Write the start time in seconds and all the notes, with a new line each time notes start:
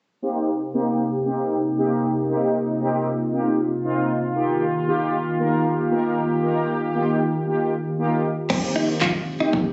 0.22 C3 A#3 C4 D#4 G4
0.74 A#3 C4 D#4 G4
1.26 A#3 C4 D#4 G4
1.77 A#3 C4 D#4 G4
2.29 A#3 C4 D#4 F4 G4
2.81 A#3 C4 D#4 G4
3.33 A#3 C4 D#4 G4
3.84 A#3 C4 D#4 F4
4.35 D#3 A#3 D#4 F4 G4
4.87 A#3 D#4 F4 G4
5.39 A#3 D#4 F4 A#4
5.91 A#3 D#4 F4 A#4
6.43 A#3 D#4 F4 A#4
6.95 A#3 D#4 F4 G4
7.46 A#3 D#4 F4 G4
7.98 A#3 D#4 F4 G4
8.50 D#3 A#3 C4 D#4 G4, kick, crash
8.76 D#4
8.89 muted clean electric guitar stroke
9.01 F4, kick, snare, clap
9.14 muted clean electric guitar stroke
9.40 A#3 C4 D#4 G4
9.53 kick